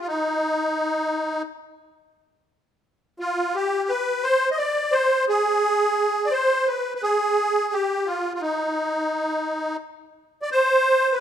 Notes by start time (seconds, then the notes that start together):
0.01 F4
0.07 D#4
3.19 F4
3.55 G4
3.89 B4
4.23 C5
4.51 D#5
4.58 D5
4.92 C5
5.29 G#4
6.25 D5
6.31 C5
6.67 B4
6.95 B4
7.03 G#4
7.73 G4
8.06 F4
8.34 F4
8.41 D#4
10.42 D5
10.52 C5
11.12 B4